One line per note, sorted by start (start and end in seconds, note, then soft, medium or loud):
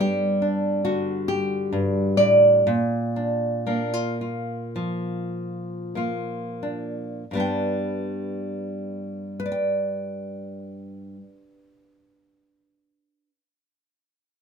0.00 1.71 G2 medium
0.00 2.66 G3 medium
0.00 2.66 B3 soft
0.00 1.27 G4 medium
0.00 0.41 A4 medium
0.42 0.84 D4 soft
0.85 2.66 D3 medium
0.85 2.18 F#4 medium
1.28 2.17 G4 medium
1.72 2.18 G2 medium
2.17 2.66 A2 medium
2.17 7.32 D5 medium
2.67 7.24 A#2 medium
3.16 3.66 D4 soft
3.67 5.94 A#3 soft
3.67 3.94 D4 soft
3.94 4.20 F4 soft
4.21 5.96 F4 soft
4.76 7.23 F3 soft
5.95 7.23 A#3 soft
5.95 7.23 F4 soft
6.63 7.23 D4 soft
7.31 11.15 G2 soft
7.31 11.18 G3 soft
7.31 9.39 B3 soft
7.37 9.45 D4 soft
7.37 9.26 G5 soft
9.40 13.24 B4 medium
9.46 13.30 D5 medium
9.52 13.36 G5 soft